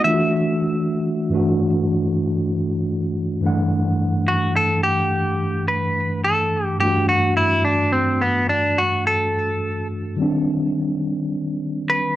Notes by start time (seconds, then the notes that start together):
0.04 E3 A3 D4 F4 E5
0.14 F#4
1.29 G2 E3 A3
1.34 D4 F#4
3.40 G2 E3 A3
3.45 D4 F#5
4.28 F#4
4.56 A4
4.83 G4
5.68 B4
6.24 A4
6.65 G4
6.78 G2 E3 A3 G4
6.83 D4 F#4
7.09 F#4
7.37 E4
7.65 D4
7.93 C4
8.21 B3
8.49 D4
8.78 F#4
9.07 A4
10.16 D#3 G3 C4
10.22 D4
11.90 B4